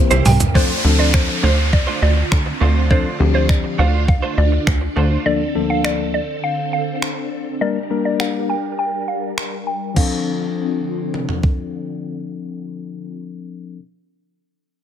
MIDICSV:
0, 0, Header, 1, 9, 480
1, 0, Start_track
1, 0, Key_signature, -1, "minor"
1, 0, Tempo, 588235
1, 450, Time_signature, 4, 2, 24, 8
1, 12104, End_track
2, 0, Start_track
2, 0, Title_t, "Synth pluck"
2, 0, Program_c, 0, 84
2, 210, Note_on_c, 0, 79, 89
2, 289, Note_off_c, 0, 79, 0
2, 450, Note_on_c, 0, 72, 99
2, 607, Note_off_c, 0, 72, 0
2, 811, Note_on_c, 0, 74, 79
2, 889, Note_off_c, 0, 74, 0
2, 931, Note_on_c, 0, 72, 80
2, 1088, Note_off_c, 0, 72, 0
2, 1172, Note_on_c, 0, 72, 85
2, 1250, Note_off_c, 0, 72, 0
2, 1411, Note_on_c, 0, 74, 86
2, 1568, Note_off_c, 0, 74, 0
2, 1652, Note_on_c, 0, 74, 88
2, 1730, Note_off_c, 0, 74, 0
2, 2371, Note_on_c, 0, 72, 102
2, 2528, Note_off_c, 0, 72, 0
2, 2731, Note_on_c, 0, 72, 76
2, 2810, Note_off_c, 0, 72, 0
2, 2850, Note_on_c, 0, 74, 77
2, 3008, Note_off_c, 0, 74, 0
2, 3092, Note_on_c, 0, 77, 92
2, 3170, Note_off_c, 0, 77, 0
2, 3332, Note_on_c, 0, 77, 89
2, 3489, Note_off_c, 0, 77, 0
2, 3572, Note_on_c, 0, 74, 88
2, 3650, Note_off_c, 0, 74, 0
2, 4291, Note_on_c, 0, 74, 100
2, 4448, Note_off_c, 0, 74, 0
2, 4651, Note_on_c, 0, 77, 77
2, 4729, Note_off_c, 0, 77, 0
2, 4770, Note_on_c, 0, 74, 86
2, 4928, Note_off_c, 0, 74, 0
2, 5011, Note_on_c, 0, 74, 83
2, 5089, Note_off_c, 0, 74, 0
2, 5252, Note_on_c, 0, 77, 89
2, 5408, Note_off_c, 0, 77, 0
2, 5492, Note_on_c, 0, 77, 74
2, 5570, Note_off_c, 0, 77, 0
2, 6211, Note_on_c, 0, 74, 98
2, 6368, Note_off_c, 0, 74, 0
2, 6571, Note_on_c, 0, 74, 74
2, 6649, Note_off_c, 0, 74, 0
2, 6691, Note_on_c, 0, 77, 82
2, 6848, Note_off_c, 0, 77, 0
2, 6932, Note_on_c, 0, 79, 75
2, 7010, Note_off_c, 0, 79, 0
2, 7170, Note_on_c, 0, 79, 92
2, 7328, Note_off_c, 0, 79, 0
2, 7409, Note_on_c, 0, 77, 80
2, 7488, Note_off_c, 0, 77, 0
2, 7890, Note_on_c, 0, 79, 84
2, 7969, Note_off_c, 0, 79, 0
2, 8129, Note_on_c, 0, 77, 80
2, 9537, Note_off_c, 0, 77, 0
2, 12104, End_track
3, 0, Start_track
3, 0, Title_t, "Clean electric guitar"
3, 0, Program_c, 1, 27
3, 87, Note_on_c, 1, 72, 96
3, 93, Note_on_c, 1, 67, 81
3, 98, Note_on_c, 1, 64, 78
3, 102, Note_on_c, 1, 58, 72
3, 198, Note_off_c, 1, 58, 0
3, 202, Note_off_c, 1, 64, 0
3, 206, Note_off_c, 1, 67, 0
3, 209, Note_off_c, 1, 72, 0
3, 445, Note_on_c, 1, 57, 85
3, 451, Note_on_c, 1, 62, 79
3, 456, Note_on_c, 1, 65, 88
3, 461, Note_on_c, 1, 72, 83
3, 668, Note_off_c, 1, 57, 0
3, 672, Note_off_c, 1, 62, 0
3, 674, Note_off_c, 1, 65, 0
3, 676, Note_off_c, 1, 72, 0
3, 805, Note_on_c, 1, 72, 67
3, 811, Note_on_c, 1, 65, 54
3, 817, Note_on_c, 1, 62, 58
3, 821, Note_on_c, 1, 57, 50
3, 917, Note_off_c, 1, 57, 0
3, 921, Note_off_c, 1, 62, 0
3, 925, Note_off_c, 1, 65, 0
3, 928, Note_off_c, 1, 72, 0
3, 1166, Note_on_c, 1, 57, 81
3, 1173, Note_on_c, 1, 62, 90
3, 1177, Note_on_c, 1, 65, 87
3, 1182, Note_on_c, 1, 72, 97
3, 1276, Note_off_c, 1, 72, 0
3, 1282, Note_off_c, 1, 65, 0
3, 1286, Note_on_c, 1, 72, 62
3, 1287, Note_off_c, 1, 62, 0
3, 1292, Note_off_c, 1, 57, 0
3, 1292, Note_on_c, 1, 65, 59
3, 1297, Note_on_c, 1, 62, 59
3, 1302, Note_on_c, 1, 57, 53
3, 1398, Note_off_c, 1, 57, 0
3, 1402, Note_off_c, 1, 62, 0
3, 1405, Note_off_c, 1, 65, 0
3, 1408, Note_off_c, 1, 72, 0
3, 1526, Note_on_c, 1, 72, 77
3, 1532, Note_on_c, 1, 65, 72
3, 1537, Note_on_c, 1, 62, 74
3, 1542, Note_on_c, 1, 57, 73
3, 1638, Note_off_c, 1, 57, 0
3, 1643, Note_off_c, 1, 62, 0
3, 1646, Note_off_c, 1, 65, 0
3, 1649, Note_off_c, 1, 72, 0
3, 2126, Note_on_c, 1, 57, 82
3, 2133, Note_on_c, 1, 62, 76
3, 2138, Note_on_c, 1, 65, 77
3, 2142, Note_on_c, 1, 72, 81
3, 2237, Note_off_c, 1, 72, 0
3, 2243, Note_off_c, 1, 65, 0
3, 2246, Note_on_c, 1, 72, 64
3, 2248, Note_off_c, 1, 62, 0
3, 2253, Note_off_c, 1, 57, 0
3, 2253, Note_on_c, 1, 65, 59
3, 2258, Note_on_c, 1, 62, 50
3, 2263, Note_on_c, 1, 57, 48
3, 2357, Note_off_c, 1, 57, 0
3, 2363, Note_off_c, 1, 62, 0
3, 2366, Note_on_c, 1, 57, 81
3, 2368, Note_off_c, 1, 65, 0
3, 2371, Note_off_c, 1, 72, 0
3, 2373, Note_on_c, 1, 62, 83
3, 2378, Note_on_c, 1, 65, 88
3, 2382, Note_on_c, 1, 72, 92
3, 2589, Note_off_c, 1, 57, 0
3, 2592, Note_off_c, 1, 62, 0
3, 2595, Note_off_c, 1, 65, 0
3, 2597, Note_off_c, 1, 72, 0
3, 2726, Note_on_c, 1, 72, 62
3, 2733, Note_on_c, 1, 65, 61
3, 2738, Note_on_c, 1, 62, 57
3, 2742, Note_on_c, 1, 57, 54
3, 2838, Note_off_c, 1, 57, 0
3, 2843, Note_off_c, 1, 62, 0
3, 2846, Note_off_c, 1, 65, 0
3, 2850, Note_off_c, 1, 72, 0
3, 3087, Note_on_c, 1, 57, 90
3, 3093, Note_on_c, 1, 62, 93
3, 3098, Note_on_c, 1, 65, 84
3, 3102, Note_on_c, 1, 72, 89
3, 3198, Note_off_c, 1, 72, 0
3, 3204, Note_off_c, 1, 65, 0
3, 3208, Note_on_c, 1, 72, 56
3, 3209, Note_off_c, 1, 62, 0
3, 3214, Note_off_c, 1, 57, 0
3, 3214, Note_on_c, 1, 65, 52
3, 3219, Note_on_c, 1, 62, 57
3, 3224, Note_on_c, 1, 57, 52
3, 3319, Note_off_c, 1, 57, 0
3, 3323, Note_off_c, 1, 62, 0
3, 3327, Note_off_c, 1, 65, 0
3, 3330, Note_off_c, 1, 72, 0
3, 3447, Note_on_c, 1, 72, 83
3, 3453, Note_on_c, 1, 65, 76
3, 3458, Note_on_c, 1, 62, 67
3, 3463, Note_on_c, 1, 57, 72
3, 3558, Note_off_c, 1, 57, 0
3, 3563, Note_off_c, 1, 62, 0
3, 3566, Note_off_c, 1, 65, 0
3, 3570, Note_off_c, 1, 72, 0
3, 4047, Note_on_c, 1, 57, 81
3, 4053, Note_on_c, 1, 62, 77
3, 4058, Note_on_c, 1, 65, 81
3, 4062, Note_on_c, 1, 72, 83
3, 4156, Note_off_c, 1, 72, 0
3, 4162, Note_off_c, 1, 65, 0
3, 4166, Note_on_c, 1, 72, 63
3, 4168, Note_off_c, 1, 62, 0
3, 4172, Note_off_c, 1, 57, 0
3, 4172, Note_on_c, 1, 65, 56
3, 4177, Note_on_c, 1, 62, 50
3, 4182, Note_on_c, 1, 57, 47
3, 4291, Note_off_c, 1, 72, 0
3, 4294, Note_off_c, 1, 65, 0
3, 4297, Note_off_c, 1, 62, 0
3, 4299, Note_off_c, 1, 57, 0
3, 12104, End_track
4, 0, Start_track
4, 0, Title_t, "String machine"
4, 0, Program_c, 2, 50
4, 0, Note_on_c, 2, 48, 81
4, 0, Note_on_c, 2, 58, 70
4, 0, Note_on_c, 2, 64, 90
4, 441, Note_off_c, 2, 48, 0
4, 441, Note_off_c, 2, 58, 0
4, 441, Note_off_c, 2, 64, 0
4, 451, Note_on_c, 2, 50, 78
4, 451, Note_on_c, 2, 60, 73
4, 451, Note_on_c, 2, 65, 89
4, 2352, Note_off_c, 2, 60, 0
4, 2372, Note_on_c, 2, 62, 71
4, 4258, Note_off_c, 2, 65, 0
4, 4272, Note_off_c, 2, 62, 0
4, 4290, Note_on_c, 2, 60, 84
4, 4291, Note_on_c, 2, 69, 73
4, 6178, Note_off_c, 2, 50, 0
4, 6191, Note_off_c, 2, 60, 0
4, 6191, Note_off_c, 2, 69, 0
4, 6210, Note_on_c, 2, 55, 78
4, 6210, Note_on_c, 2, 70, 85
4, 6211, Note_on_c, 2, 62, 69
4, 8111, Note_off_c, 2, 55, 0
4, 8111, Note_off_c, 2, 70, 0
4, 8112, Note_off_c, 2, 62, 0
4, 8130, Note_on_c, 2, 50, 78
4, 8130, Note_on_c, 2, 65, 84
4, 8131, Note_on_c, 2, 60, 70
4, 10670, Note_off_c, 2, 50, 0
4, 10670, Note_off_c, 2, 65, 0
4, 10671, Note_off_c, 2, 60, 0
4, 12104, End_track
5, 0, Start_track
5, 0, Title_t, "Tine electric piano"
5, 0, Program_c, 3, 4
5, 0, Note_on_c, 3, 58, 76
5, 0, Note_on_c, 3, 60, 68
5, 0, Note_on_c, 3, 64, 71
5, 0, Note_on_c, 3, 67, 69
5, 0, Note_on_c, 3, 72, 84
5, 114, Note_off_c, 3, 58, 0
5, 114, Note_off_c, 3, 60, 0
5, 115, Note_off_c, 3, 64, 0
5, 115, Note_off_c, 3, 67, 0
5, 116, Note_off_c, 3, 72, 0
5, 449, Note_on_c, 3, 53, 70
5, 450, Note_on_c, 3, 60, 65
5, 452, Note_on_c, 3, 62, 68
5, 453, Note_on_c, 3, 69, 78
5, 578, Note_off_c, 3, 53, 0
5, 578, Note_off_c, 3, 60, 0
5, 579, Note_off_c, 3, 62, 0
5, 580, Note_off_c, 3, 69, 0
5, 689, Note_on_c, 3, 53, 70
5, 691, Note_on_c, 3, 60, 68
5, 692, Note_on_c, 3, 62, 66
5, 694, Note_on_c, 3, 69, 78
5, 1202, Note_off_c, 3, 53, 0
5, 1203, Note_off_c, 3, 60, 0
5, 1204, Note_off_c, 3, 62, 0
5, 1204, Note_off_c, 3, 69, 0
5, 2369, Note_on_c, 3, 53, 71
5, 2370, Note_on_c, 3, 60, 65
5, 2372, Note_on_c, 3, 62, 63
5, 2373, Note_on_c, 3, 69, 76
5, 2498, Note_off_c, 3, 53, 0
5, 2498, Note_off_c, 3, 60, 0
5, 2499, Note_off_c, 3, 62, 0
5, 2500, Note_off_c, 3, 69, 0
5, 2608, Note_on_c, 3, 53, 72
5, 2609, Note_on_c, 3, 60, 64
5, 2611, Note_on_c, 3, 62, 65
5, 2612, Note_on_c, 3, 67, 77
5, 3122, Note_off_c, 3, 53, 0
5, 3122, Note_off_c, 3, 60, 0
5, 3123, Note_off_c, 3, 62, 0
5, 3123, Note_off_c, 3, 67, 0
5, 4289, Note_on_c, 3, 38, 71
5, 4290, Note_on_c, 3, 53, 64
5, 4291, Note_on_c, 3, 58, 66
5, 4292, Note_on_c, 3, 62, 66
5, 4293, Note_on_c, 3, 69, 76
5, 4418, Note_off_c, 3, 38, 0
5, 4418, Note_off_c, 3, 53, 0
5, 4419, Note_off_c, 3, 58, 0
5, 4419, Note_off_c, 3, 62, 0
5, 4420, Note_off_c, 3, 69, 0
5, 4529, Note_on_c, 3, 38, 71
5, 4530, Note_on_c, 3, 53, 66
5, 4531, Note_on_c, 3, 58, 68
5, 4532, Note_on_c, 3, 62, 66
5, 4533, Note_on_c, 3, 69, 79
5, 5042, Note_off_c, 3, 38, 0
5, 5043, Note_off_c, 3, 53, 0
5, 5043, Note_off_c, 3, 58, 0
5, 5044, Note_off_c, 3, 62, 0
5, 5044, Note_off_c, 3, 69, 0
5, 6209, Note_on_c, 3, 55, 71
5, 6210, Note_on_c, 3, 58, 64
5, 6212, Note_on_c, 3, 62, 64
5, 6213, Note_on_c, 3, 70, 78
5, 6338, Note_off_c, 3, 55, 0
5, 6339, Note_off_c, 3, 58, 0
5, 6339, Note_off_c, 3, 62, 0
5, 6340, Note_off_c, 3, 70, 0
5, 6449, Note_on_c, 3, 55, 69
5, 6451, Note_on_c, 3, 58, 63
5, 6452, Note_on_c, 3, 62, 66
5, 6453, Note_on_c, 3, 70, 75
5, 6962, Note_off_c, 3, 55, 0
5, 6963, Note_off_c, 3, 58, 0
5, 6964, Note_off_c, 3, 62, 0
5, 6964, Note_off_c, 3, 70, 0
5, 8114, Note_on_c, 3, 53, 76
5, 8125, Note_on_c, 3, 60, 69
5, 8136, Note_on_c, 3, 62, 72
5, 8147, Note_on_c, 3, 69, 80
5, 11234, Note_off_c, 3, 53, 0
5, 11239, Note_off_c, 3, 60, 0
5, 11245, Note_off_c, 3, 62, 0
5, 11250, Note_off_c, 3, 69, 0
5, 12104, End_track
6, 0, Start_track
6, 0, Title_t, "Analog synth bass"
6, 0, Program_c, 4, 38
6, 90, Note_on_c, 4, 36, 95
6, 177, Note_off_c, 4, 36, 0
6, 210, Note_on_c, 4, 36, 91
6, 383, Note_off_c, 4, 36, 0
6, 690, Note_on_c, 4, 38, 89
6, 1037, Note_off_c, 4, 38, 0
6, 1171, Note_on_c, 4, 38, 90
6, 1517, Note_off_c, 4, 38, 0
6, 1650, Note_on_c, 4, 38, 91
6, 1824, Note_off_c, 4, 38, 0
6, 1892, Note_on_c, 4, 38, 102
6, 2065, Note_off_c, 4, 38, 0
6, 2131, Note_on_c, 4, 38, 95
6, 2478, Note_off_c, 4, 38, 0
6, 2611, Note_on_c, 4, 38, 90
6, 2958, Note_off_c, 4, 38, 0
6, 3091, Note_on_c, 4, 38, 90
6, 3438, Note_off_c, 4, 38, 0
6, 3571, Note_on_c, 4, 38, 90
6, 3744, Note_off_c, 4, 38, 0
6, 3812, Note_on_c, 4, 38, 102
6, 3985, Note_off_c, 4, 38, 0
6, 4051, Note_on_c, 4, 38, 100
6, 4224, Note_off_c, 4, 38, 0
6, 12104, End_track
7, 0, Start_track
7, 0, Title_t, "Downlifter"
7, 0, Program_c, 5, 103
7, 451, Note_on_c, 5, 60, 81
7, 4291, Note_off_c, 5, 60, 0
7, 12104, End_track
8, 0, Start_track
8, 0, Title_t, "Muted clean electric guitar strokes"
8, 208, Note_on_c, 9, 29, 44
8, 289, Note_off_c, 9, 29, 0
8, 327, Note_on_c, 9, 29, 51
8, 408, Note_off_c, 9, 29, 0
8, 687, Note_on_c, 9, 29, 40
8, 769, Note_off_c, 9, 29, 0
8, 927, Note_on_c, 9, 29, 36
8, 1008, Note_off_c, 9, 29, 0
8, 1047, Note_on_c, 9, 29, 43
8, 1128, Note_off_c, 9, 29, 0
8, 1407, Note_on_c, 9, 29, 36
8, 1489, Note_off_c, 9, 29, 0
8, 1648, Note_on_c, 9, 29, 37
8, 1729, Note_off_c, 9, 29, 0
8, 1767, Note_on_c, 9, 29, 45
8, 1848, Note_off_c, 9, 29, 0
8, 1888, Note_on_c, 9, 29, 40
8, 1969, Note_off_c, 9, 29, 0
8, 2008, Note_on_c, 9, 29, 47
8, 2090, Note_off_c, 9, 29, 0
8, 2608, Note_on_c, 9, 29, 42
8, 2690, Note_off_c, 9, 29, 0
8, 2848, Note_on_c, 9, 29, 38
8, 2930, Note_off_c, 9, 29, 0
8, 2969, Note_on_c, 9, 29, 45
8, 3050, Note_off_c, 9, 29, 0
8, 3329, Note_on_c, 9, 29, 43
8, 3410, Note_off_c, 9, 29, 0
8, 3568, Note_on_c, 9, 29, 41
8, 3650, Note_off_c, 9, 29, 0
8, 3688, Note_on_c, 9, 29, 45
8, 3770, Note_off_c, 9, 29, 0
8, 3808, Note_on_c, 9, 29, 44
8, 3890, Note_off_c, 9, 29, 0
8, 3928, Note_on_c, 9, 29, 45
8, 4010, Note_off_c, 9, 29, 0
8, 12104, End_track
9, 0, Start_track
9, 0, Title_t, "Drums"
9, 89, Note_on_c, 9, 42, 55
9, 89, Note_on_c, 9, 82, 56
9, 90, Note_on_c, 9, 47, 70
9, 170, Note_off_c, 9, 42, 0
9, 170, Note_off_c, 9, 82, 0
9, 172, Note_off_c, 9, 47, 0
9, 208, Note_on_c, 9, 46, 88
9, 208, Note_on_c, 9, 82, 60
9, 210, Note_on_c, 9, 45, 105
9, 290, Note_off_c, 9, 46, 0
9, 290, Note_off_c, 9, 82, 0
9, 291, Note_off_c, 9, 45, 0
9, 329, Note_on_c, 9, 42, 57
9, 329, Note_on_c, 9, 82, 82
9, 330, Note_on_c, 9, 43, 101
9, 411, Note_off_c, 9, 42, 0
9, 411, Note_off_c, 9, 43, 0
9, 411, Note_off_c, 9, 82, 0
9, 451, Note_on_c, 9, 36, 116
9, 532, Note_off_c, 9, 36, 0
9, 929, Note_on_c, 9, 26, 110
9, 930, Note_on_c, 9, 36, 114
9, 1011, Note_off_c, 9, 26, 0
9, 1011, Note_off_c, 9, 36, 0
9, 1412, Note_on_c, 9, 36, 105
9, 1494, Note_off_c, 9, 36, 0
9, 1892, Note_on_c, 9, 26, 109
9, 1892, Note_on_c, 9, 36, 114
9, 1973, Note_off_c, 9, 26, 0
9, 1974, Note_off_c, 9, 36, 0
9, 2371, Note_on_c, 9, 36, 110
9, 2453, Note_off_c, 9, 36, 0
9, 2850, Note_on_c, 9, 26, 102
9, 2850, Note_on_c, 9, 36, 117
9, 2931, Note_off_c, 9, 26, 0
9, 2931, Note_off_c, 9, 36, 0
9, 3332, Note_on_c, 9, 36, 103
9, 3414, Note_off_c, 9, 36, 0
9, 3812, Note_on_c, 9, 26, 107
9, 3812, Note_on_c, 9, 36, 111
9, 3893, Note_off_c, 9, 26, 0
9, 3894, Note_off_c, 9, 36, 0
9, 4770, Note_on_c, 9, 26, 103
9, 4851, Note_off_c, 9, 26, 0
9, 5732, Note_on_c, 9, 26, 101
9, 5813, Note_off_c, 9, 26, 0
9, 6690, Note_on_c, 9, 26, 102
9, 6772, Note_off_c, 9, 26, 0
9, 7652, Note_on_c, 9, 26, 101
9, 7734, Note_off_c, 9, 26, 0
9, 8131, Note_on_c, 9, 36, 99
9, 8131, Note_on_c, 9, 49, 79
9, 8212, Note_off_c, 9, 36, 0
9, 8212, Note_off_c, 9, 49, 0
9, 9091, Note_on_c, 9, 47, 51
9, 9172, Note_off_c, 9, 47, 0
9, 9210, Note_on_c, 9, 43, 69
9, 9292, Note_off_c, 9, 43, 0
9, 9330, Note_on_c, 9, 36, 84
9, 9412, Note_off_c, 9, 36, 0
9, 12104, End_track
0, 0, End_of_file